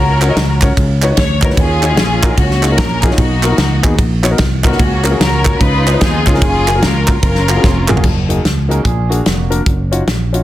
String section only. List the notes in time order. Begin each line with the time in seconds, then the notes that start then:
Already playing: C#4 F#4 A#4
1.18 C#5
1.44 A#4
1.58 C#4 F4 G#4
2.38 A#3 C#4 F#4
2.77 A#4
3.02 G#4
3.18 A#3 D#4 F#4
4.65 A#3 C#4 F#4
5.21 C#4 F#4 A#4
5.61 D#4 F4 B4
6.02 B3 F4 G#4
6.43 C#4 F4 G#4
6.83 C#4 F4 A#4
7.23 C#4 F4 A#4